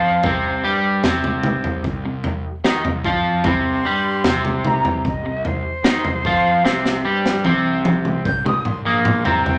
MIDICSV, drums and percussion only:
0, 0, Header, 1, 2, 480
1, 0, Start_track
1, 0, Tempo, 802139
1, 139, Time_signature, 4, 2, 24, 8
1, 5734, End_track
2, 0, Start_track
2, 0, Title_t, "Drums"
2, 139, Note_on_c, 9, 43, 80
2, 141, Note_on_c, 9, 36, 100
2, 199, Note_off_c, 9, 43, 0
2, 201, Note_off_c, 9, 36, 0
2, 620, Note_on_c, 9, 43, 87
2, 621, Note_on_c, 9, 38, 73
2, 680, Note_off_c, 9, 43, 0
2, 681, Note_off_c, 9, 38, 0
2, 742, Note_on_c, 9, 47, 75
2, 802, Note_off_c, 9, 47, 0
2, 858, Note_on_c, 9, 47, 82
2, 918, Note_off_c, 9, 47, 0
2, 981, Note_on_c, 9, 43, 74
2, 1041, Note_off_c, 9, 43, 0
2, 1103, Note_on_c, 9, 36, 85
2, 1163, Note_off_c, 9, 36, 0
2, 1340, Note_on_c, 9, 43, 79
2, 1400, Note_off_c, 9, 43, 0
2, 1583, Note_on_c, 9, 38, 77
2, 1643, Note_off_c, 9, 38, 0
2, 1704, Note_on_c, 9, 43, 88
2, 1764, Note_off_c, 9, 43, 0
2, 1822, Note_on_c, 9, 36, 101
2, 1882, Note_off_c, 9, 36, 0
2, 2059, Note_on_c, 9, 43, 91
2, 2061, Note_on_c, 9, 36, 103
2, 2119, Note_off_c, 9, 43, 0
2, 2121, Note_off_c, 9, 36, 0
2, 2539, Note_on_c, 9, 43, 89
2, 2540, Note_on_c, 9, 38, 78
2, 2599, Note_off_c, 9, 43, 0
2, 2600, Note_off_c, 9, 38, 0
2, 2661, Note_on_c, 9, 47, 73
2, 2721, Note_off_c, 9, 47, 0
2, 2780, Note_on_c, 9, 47, 79
2, 2840, Note_off_c, 9, 47, 0
2, 2901, Note_on_c, 9, 43, 82
2, 2961, Note_off_c, 9, 43, 0
2, 3021, Note_on_c, 9, 36, 87
2, 3081, Note_off_c, 9, 36, 0
2, 3261, Note_on_c, 9, 43, 78
2, 3321, Note_off_c, 9, 43, 0
2, 3497, Note_on_c, 9, 38, 81
2, 3557, Note_off_c, 9, 38, 0
2, 3618, Note_on_c, 9, 43, 83
2, 3678, Note_off_c, 9, 43, 0
2, 3740, Note_on_c, 9, 36, 94
2, 3799, Note_off_c, 9, 36, 0
2, 3983, Note_on_c, 9, 38, 57
2, 4043, Note_off_c, 9, 38, 0
2, 4102, Note_on_c, 9, 38, 58
2, 4162, Note_off_c, 9, 38, 0
2, 4343, Note_on_c, 9, 38, 63
2, 4402, Note_off_c, 9, 38, 0
2, 4456, Note_on_c, 9, 48, 71
2, 4516, Note_off_c, 9, 48, 0
2, 4698, Note_on_c, 9, 48, 86
2, 4757, Note_off_c, 9, 48, 0
2, 4818, Note_on_c, 9, 47, 63
2, 4877, Note_off_c, 9, 47, 0
2, 4939, Note_on_c, 9, 36, 109
2, 4999, Note_off_c, 9, 36, 0
2, 5063, Note_on_c, 9, 47, 75
2, 5123, Note_off_c, 9, 47, 0
2, 5177, Note_on_c, 9, 45, 78
2, 5237, Note_off_c, 9, 45, 0
2, 5417, Note_on_c, 9, 45, 101
2, 5477, Note_off_c, 9, 45, 0
2, 5536, Note_on_c, 9, 43, 88
2, 5596, Note_off_c, 9, 43, 0
2, 5662, Note_on_c, 9, 43, 92
2, 5722, Note_off_c, 9, 43, 0
2, 5734, End_track
0, 0, End_of_file